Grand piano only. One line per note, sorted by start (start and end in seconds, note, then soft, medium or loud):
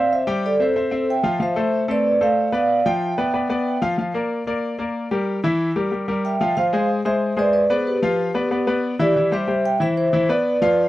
0.00 0.21 C4 medium
0.00 0.21 C5 medium
0.00 0.22 E5 medium
0.27 0.54 G3 medium
0.27 0.54 G4 medium
0.27 0.54 G5 medium
0.60 0.73 C4 medium
0.60 0.73 C5 medium
0.60 0.73 E5 medium
0.76 0.89 C4 medium
0.76 0.89 C5 medium
0.76 0.89 E5 medium
0.91 1.18 C4 medium
0.91 1.18 C5 medium
0.91 1.18 E5 medium
1.23 1.37 F3 medium
1.23 1.37 F4 medium
1.23 1.37 F5 medium
1.40 1.53 F3 medium
1.40 1.53 F4 medium
1.40 1.53 F5 medium
1.56 1.83 A3 medium
1.56 1.83 A4 medium
1.56 1.83 C5 medium
1.88 2.15 A3 medium
1.88 2.15 C4 medium
1.88 2.15 A4 medium
2.21 2.47 A3 medium
2.21 2.47 A4 medium
2.21 2.47 C5 medium
2.52 2.79 B3 medium
2.52 2.79 B4 medium
2.52 2.79 D5 medium
2.86 3.12 F3 medium
2.86 3.12 F4 medium
2.86 3.12 G5 medium
3.18 3.31 B3 medium
3.18 3.31 B4 medium
3.18 3.31 D5 medium
3.34 3.47 B3 medium
3.34 3.47 B4 medium
3.34 3.47 D5 medium
3.49 3.76 B3 medium
3.49 3.76 B4 medium
3.49 3.76 D5 medium
3.82 3.95 F3 medium
3.82 3.95 F4 medium
3.82 3.95 F5 medium
3.98 4.11 F3 medium
3.98 4.11 F4 medium
3.98 4.12 F5 medium
4.14 4.41 A#3 medium
4.14 4.41 A#4 medium
4.14 4.41 D5 medium
4.47 4.73 A#3 medium
4.47 4.73 A#4 medium
4.47 4.73 D5 medium
4.79 5.05 A#3 medium
4.79 5.05 A#4 medium
4.79 5.06 D5 medium
5.11 5.38 G3 medium
5.11 5.38 G4 medium
5.11 5.38 A#4 medium
5.44 5.70 E3 medium
5.44 5.70 E4 medium
5.44 5.70 E5 medium
5.76 5.89 G3 medium
5.76 5.89 G4 medium
5.76 5.89 A#4 medium
5.92 6.05 G3 medium
5.92 6.05 G4 medium
5.92 6.05 A#4 medium
6.08 6.34 G3 medium
6.08 6.34 G4 medium
6.08 6.35 A#4 medium
6.41 6.54 F3 medium
6.41 6.54 F4 medium
6.41 6.54 F5 medium
6.57 6.70 F3 medium
6.57 6.70 F4 medium
6.57 6.70 F5 medium
6.73 6.99 G#3 medium
6.73 6.99 G#4 medium
6.73 7.00 C5 medium
7.05 7.31 G#3 medium
7.05 7.32 G#4 medium
7.05 7.32 C5 medium
7.37 7.63 G#3 medium
7.37 7.64 G#4 medium
7.37 7.64 C5 medium
7.70 7.96 B3 medium
7.70 7.96 B4 medium
7.70 7.97 D5 medium
8.02 8.29 F3 medium
8.02 8.29 F4 loud
8.02 8.29 F5 medium
8.34 8.48 B3 medium
8.34 8.48 B4 medium
8.34 8.48 D5 medium
8.51 8.64 B3 medium
8.51 8.64 B4 medium
8.51 8.64 D5 medium
8.67 8.93 B3 medium
8.67 8.94 B4 medium
8.67 8.94 D5 medium
8.99 9.12 E3 medium
8.99 9.13 E4 medium
8.99 9.13 E5 medium
9.16 9.29 E3 medium
9.16 9.29 E4 medium
9.16 9.29 E5 medium
9.32 9.45 G3 medium
9.32 9.45 G4 medium
9.32 9.45 C5 medium
9.48 9.74 G3 medium
9.48 9.74 G4 medium
9.48 9.75 C5 medium
9.80 10.06 E3 medium
9.80 10.07 E4 medium
9.80 10.07 E5 medium
10.13 10.26 E3 medium
10.13 10.26 E4 medium
10.13 10.26 E5 medium
10.29 10.55 B3 medium
10.29 10.56 B4 medium
10.29 10.56 D5 medium
10.62 10.88 F3 medium
10.62 10.88 F4 medium
10.62 10.88 F5 loud